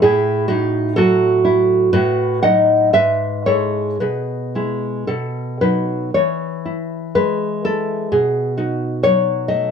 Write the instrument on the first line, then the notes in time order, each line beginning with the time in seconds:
nylon-string guitar
0.02 A2 E4 G#4
0.48 D#4 E4 F#4
0.96 F#3 F#4 A4
1.45 E4
1.93 A2 F#4 B4
2.43 F#3 D#4 D#5 F#5
2.93 G#2 B4 E5
3.46 G#3 E4 A4 C#5
4.00 B2 G#4 B4
4.55 G#3 E4
5.07 B2 A4
5.61 F#3 D#4 B4
6.14 E3 C#5
6.65 E4
7.15 G#3 B4
7.64 E4 A4
8.12 B2 G#4
8.57 D#4 F#4
9.03 F#3 C#5
9.48 A3 D#5